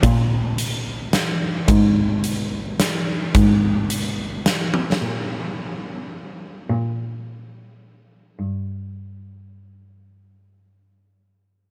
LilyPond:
<<
  \new Staff \with { instrumentName = "Cello" } { \clef bass \time 3/4 \key bes \mixolydian \tempo 4 = 107 bes,2. | aes,2. | aes,2. | bes,2. |
bes,2. | g,2.~ | g,2. | }
  \new DrumStaff \with { instrumentName = "Drums" } \drummode { \time 3/4 <hh bd>4 hh4 <hh sn>4 | <hh bd>4 hh4 <hh sn>4 | <hh bd>4 hh4 \tuplet 3/2 { <hh sn>16 r16 r16 tommh16 r16 sn16 } | r4 r4 r4 |
r4 r4 r4 | r4 r4 r4 | r4 r4 r4 | }
>>